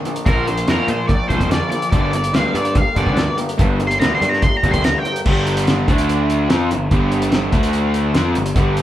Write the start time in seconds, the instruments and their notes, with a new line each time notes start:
Already playing: twelve-string acoustic guitar A#2 D3 F3 A#3 D4 A#4
0.05 overdriven electric guitar A#2 F3, closed hi-hat
0.15 twelve-string acoustic guitar F3 A#3 D4 A#4, closed hi-hat
0.26 picked electric bass A#1, overdriven electric guitar A#2 F3 A#3, twelve-string acoustic guitar A#2 D3 F3 A#3 D4 A#4, lead electric guitar A#4, kick, closed hi-hat
0.46 overdriven electric guitar A#2 F3, twelve-string acoustic guitar F3 A#3 D4 A#4, lead electric guitar C5, closed hi-hat
0.58 twelve-string acoustic guitar F3 A#3 D4 A#4, closed hi-hat
0.67 picked electric bass F2, overdriven electric guitar A#2 F3 A#3, twelve-string acoustic guitar A#2 D3 F3 A#3 D4 A#4, lead electric guitar A#4, snare, closed hi-hat
0.88 picked electric bass A#2, overdriven electric guitar A#2 F3, twelve-string acoustic guitar F3 A#3 D4 A#4, lead electric guitar C5, closed hi-hat
1.00 twelve-string acoustic guitar F3 A#3 D4 A#4
1.07 overdriven electric guitar A#2 F3, lead electric guitar D5, kick, closed hi-hat
1.22 twelve-string acoustic guitar F3 A#3 D4 A#4
1.29 picked electric bass A#1, overdriven electric guitar A#2 F3 A#3, twelve-string acoustic guitar F3, lead electric guitar C5, kick, closed hi-hat
1.33 twelve-string acoustic guitar A#3 D4 A#4
1.40 picked electric bass F2, twelve-string acoustic guitar F3 A#3 D4 A#4, kick, closed hi-hat
1.51 overdriven electric guitar A#2 F3, twelve-string acoustic guitar A#2 D3 F3 A#3 D4 A#4, lead electric guitar D5, snare, closed hi-hat
1.70 overdriven electric guitar A#2 F3, lead electric guitar D5, closed hi-hat
1.82 twelve-string acoustic guitar F3 A#3 D4 A#4, closed hi-hat
1.90 picked electric bass G1, overdriven electric guitar G2 D3 G3, twelve-string acoustic guitar G2, lead electric guitar D5, kick, closed hi-hat
1.94 twelve-string acoustic guitar D3 G3 A#3 D4 A#4
2.13 overdriven electric guitar G2 D3, twelve-string acoustic guitar G3 A#3, lead electric guitar D5, closed hi-hat
2.17 twelve-string acoustic guitar D4 A#4
2.24 twelve-string acoustic guitar G3 A#3 D4 A#4, closed hi-hat
2.33 picked electric bass D2, overdriven electric guitar G2 D3 G3, twelve-string acoustic guitar G2 D3 G3 A#3 D4 A#4, lead electric guitar F5, snare, closed hi-hat
2.55 picked electric bass G2, overdriven electric guitar G2 D3, twelve-string acoustic guitar G3 A#3 D4 A#4, lead electric guitar D5, closed hi-hat
2.65 twelve-string acoustic guitar G3 A#3 D4 A#4, closed hi-hat
2.75 overdriven electric guitar G2 D3, lead electric guitar F5, kick, closed hi-hat
2.86 twelve-string acoustic guitar G3 A#3 D4 A#4
2.96 picked electric bass G1, overdriven electric guitar G2 D3 G3, twelve-string acoustic guitar G3 A#3 D4 A#4, lead electric guitar D5, kick, closed hi-hat
3.06 picked electric bass D2, twelve-string acoustic guitar G3 A#3 D4 A#4, kick
3.17 twelve-string acoustic guitar G2 D3 G3 A#3 D4 A#4, overdriven electric guitar G2 D3, snare, closed hi-hat
3.37 overdriven electric guitar G2 D3, closed hi-hat
3.49 twelve-string acoustic guitar G3 A#3 D4 A#4, closed hi-hat
3.58 picked electric bass G1, overdriven electric guitar G2 D3 G3, twelve-string acoustic guitar G2 D3 G3 A#3 D4 A#4, kick, closed hi-hat
3.80 overdriven electric guitar G2 D3, twelve-string acoustic guitar G3 A#3 D4 A#4, closed hi-hat
3.87 lead electric guitar C6, closed hi-hat
3.91 twelve-string acoustic guitar G3 A#3 D4 A#4
4.00 picked electric bass D2, overdriven electric guitar G2 D3 G3, twelve-string acoustic guitar G2 D3 G3 A#3 D4, lead electric guitar A#5, snare, closed hi-hat
4.04 twelve-string acoustic guitar A#4
4.15 lead electric guitar C6
4.21 picked electric bass G2, overdriven electric guitar G2 D3, twelve-string acoustic guitar G3 A#3 D4 A#4, closed hi-hat
4.29 twelve-string acoustic guitar A#4, lead electric guitar A#5
4.33 twelve-string acoustic guitar G3 A#3 D4, snare
4.42 overdriven electric guitar G2 D3, lead electric guitar C6, kick, closed hi-hat
4.53 twelve-string acoustic guitar G3 A#3 D4 A#4, lead electric guitar A#5
4.63 picked electric bass G1, overdriven electric guitar G2 D3 G3, twelve-string acoustic guitar G3 A#3 D4 A#4, kick, closed hi-hat
4.71 picked electric bass D2, twelve-string acoustic guitar A#4, lead electric guitar C6, kick, closed hi-hat
4.75 twelve-string acoustic guitar G3 A#3 D4
4.84 twelve-string acoustic guitar G2 D3 G3 A#3 D4 A#4, overdriven electric guitar G2 D3, lead electric guitar A#5, snare, closed hi-hat
4.99 lead electric guitar G5
5.05 overdriven electric guitar G2 D3, closed hi-hat
5.16 twelve-string acoustic guitar G3 A#3 D4 A#4, closed hi-hat
5.26 picked electric bass G1, overdriven electric guitar G2 D3 G3, kick, crash
5.47 closed hi-hat
5.57 closed hi-hat
5.67 snare, closed hi-hat
5.88 picked electric bass D2, overdriven electric guitar D3 A3 D4, kick, closed hi-hat
5.98 snare, closed hi-hat
6.09 closed hi-hat
6.30 closed hi-hat
6.50 picked electric bass F2, overdriven electric guitar F3 C4 F4, snare, closed hi-hat
6.71 picked electric bass G1, overdriven electric guitar G2 D3, closed hi-hat
6.91 picked electric bass G1, overdriven electric guitar G2 D3 G3, kick, closed hi-hat
7.12 closed hi-hat
7.22 closed hi-hat
7.32 snare, closed hi-hat
7.52 picked electric bass D2, overdriven electric guitar D3 A3 D4, kick, closed hi-hat
7.63 closed hi-hat
7.73 closed hi-hat
7.94 closed hi-hat
8.14 picked electric bass F2, overdriven electric guitar F3 C4 F4, snare, closed hi-hat
8.35 picked electric bass G1, overdriven electric guitar G2 D3, closed hi-hat
8.46 closed hi-hat
8.55 picked electric bass G1, overdriven electric guitar G2 D3 G3, kick, closed hi-hat
8.77 closed hi-hat